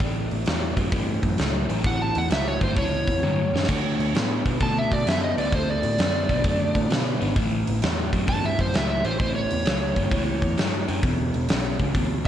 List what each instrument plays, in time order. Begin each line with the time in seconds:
0.00 picked electric bass A1, overdriven electric guitar A2 E3, kick, open hi-hat
0.31 picked electric bass A1, open hi-hat
0.46 picked electric bass E2, overdriven electric guitar A2 F#3, snare, open hi-hat
0.76 picked electric bass F#2, overdriven electric guitar A2 F#3, kick, open hi-hat
0.92 picked electric bass G2, overdriven electric guitar A2 E3, kick, open hi-hat
1.23 picked electric bass F#2, kick, open hi-hat
1.38 picked electric bass C#2, overdriven electric guitar A2 F#3, snare, open hi-hat
1.69 picked electric bass A1, overdriven electric guitar A2 F#3, open hi-hat
1.84 picked electric bass A1, overdriven electric guitar A2 E3, electric slide guitar F#5, kick, open hi-hat
2.02 electric slide guitar A5
2.15 picked electric bass E2, electric slide guitar F#5, open hi-hat
2.30 picked electric bass C#2, overdriven electric guitar A2 F#3, electric slide guitar E5, snare, open hi-hat
2.48 electric slide guitar C#5
2.61 picked electric bass G1, overdriven electric guitar A2 F#3, electric slide guitar C5, kick, open hi-hat
2.76 picked electric bass C#2, overdriven electric guitar A2 E3, electric slide guitar C#5, kick, open hi-hat
3.08 picked electric bass E2, kick, open hi-hat
3.23 picked electric bass G2, overdriven electric guitar A2 F#3, high tom
3.53 picked electric bass F#2, overdriven electric guitar A2 F#3, snare
3.63 snare
3.69 picked electric bass D2, overdriven electric guitar D3 A3, kick, open hi-hat, crash
3.99 picked electric bass D2, open hi-hat
4.14 picked electric bass A2, overdriven electric guitar D3 B3, snare, open hi-hat
4.46 picked electric bass B2, overdriven electric guitar D3 B3, kick, open hi-hat
4.60 picked electric bass B2, overdriven electric guitar D3 A3, electric slide guitar A5, kick, open hi-hat
4.79 electric slide guitar E5
4.92 picked electric bass B2, electric slide guitar D5, kick, open hi-hat
5.07 picked electric bass F#2, overdriven electric guitar D3 B3, electric slide guitar E5, snare, open hi-hat
5.24 electric slide guitar D#5
5.37 picked electric bass D2, overdriven electric guitar D3 B3, electric slide guitar D5, open hi-hat
5.52 picked electric bass D2, overdriven electric guitar D3 A3, electric slide guitar C5, kick, open hi-hat
5.70 electric slide guitar D5
5.83 picked electric bass A2, open hi-hat
5.99 picked electric bass F#2, overdriven electric guitar D3 B3, snare, open hi-hat
6.29 picked electric bass B1, overdriven electric guitar D3 B3, kick, open hi-hat
6.44 picked electric bass F#2, overdriven electric guitar D3 A3, kick, open hi-hat
6.75 picked electric bass A2, kick, open hi-hat
6.90 picked electric bass B2, overdriven electric guitar D3 B3, snare, open hi-hat
7.20 picked electric bass G#1, overdriven electric guitar D3 B3, open hi-hat
7.36 picked electric bass A1, overdriven electric guitar A2 E3, kick, open hi-hat
7.67 picked electric bass A1, open hi-hat
7.82 picked electric bass E2, overdriven electric guitar A2 F#3, snare, open hi-hat
8.13 picked electric bass F#2, overdriven electric guitar A2 F#3, kick, open hi-hat
8.28 picked electric bass G2, overdriven electric guitar A2 E3, electric slide guitar A5, kick, open hi-hat
8.45 electric slide guitar E5
8.59 picked electric bass F#2, electric slide guitar C5, kick, open hi-hat
8.74 picked electric bass C#2, overdriven electric guitar A2 F#3, electric slide guitar E5, snare, open hi-hat
8.90 electric slide guitar E5
9.05 picked electric bass A1, overdriven electric guitar A2 F#3, electric slide guitar C5, open hi-hat
9.19 picked electric bass A1, overdriven electric guitar A2 E3, electric slide guitar C5, kick, open hi-hat
9.36 electric slide guitar C#5
9.51 picked electric bass E2, open hi-hat
9.65 picked electric bass C#2, overdriven electric guitar A2 F#3, snare, open hi-hat
9.96 picked electric bass G1, overdriven electric guitar A2 F#3, kick, open hi-hat
10.11 picked electric bass C#2, overdriven electric guitar A2 E3, kick, open hi-hat
10.42 picked electric bass E2, kick, open hi-hat
10.58 picked electric bass G2, overdriven electric guitar A2 F#3, snare, open hi-hat
10.88 picked electric bass F#2, overdriven electric guitar A2 F#3, open hi-hat
11.03 picked electric bass E1, overdriven electric guitar E2 B2, kick, open hi-hat
11.34 picked electric bass E1, open hi-hat
11.49 picked electric bass B1, overdriven electric guitar E2 C#3, snare, open hi-hat
11.79 picked electric bass C#2, overdriven electric guitar E2 C#3, kick, open hi-hat
11.95 picked electric bass D2, overdriven electric guitar E2 B2, kick, open hi-hat